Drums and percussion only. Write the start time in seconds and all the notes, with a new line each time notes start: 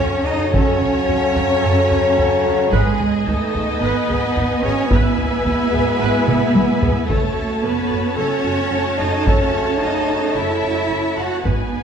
0.00 taiko low
0.54 taiko
0.81 taiko low
1.09 taiko low
1.36 taiko low
1.91 taiko low
2.19 taiko low
2.73 taiko
3.00 taiko low
3.28 taiko low
3.55 taiko low
4.10 taiko low
4.37 taiko low
4.91 taiko
5.18 taiko low
5.46 taiko low
5.74 taiko low
6.28 taiko mid
6.55 taiko high
6.82 taiko low
7.10 taiko
9.27 taiko
11.45 taiko